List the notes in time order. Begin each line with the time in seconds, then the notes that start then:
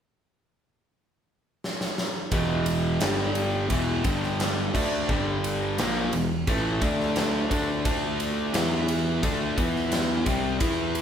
1.64 snare
1.81 snare
1.98 snare
2.31 E1 E2 B2 E3, kick, ride
2.66 ride
3.00 G1 G2 D3 G3, snare, ride
3.35 ride
3.69 E1 E2 B2 E3, kick, ride
4.04 G1 G2 D3 G3, kick, ride
4.23 snare
4.40 snare, ride
4.74 D2 D3 A3 D4, kick, crash
5.09 G1 G2 D3 G3, kick
5.44 ride
5.78 A#1 A#2 F3 A#3, snare, ride
6.13 E1 E2 B2, ride
6.47 A1 A2 E3 A3, kick, ride
6.82 D2 D3 A3 D4, kick, ride
7.00 snare
7.16 snare, ride
7.51 D2 D3 A3 D4, kick, ride
7.85 D2 D3 A3 D4, kick, ride
8.20 ride
8.54 E2 E3 B3 E4, snare, ride
8.88 ride
9.23 D2 D3 A3 D4, kick, ride
9.57 E2 E3 B3 E4, kick, ride
9.76 snare
9.92 snare, ride
10.26 C2 C3 G3 C4, kick, ride
10.59 E2 E3 B3 E4, kick, ride
10.95 ride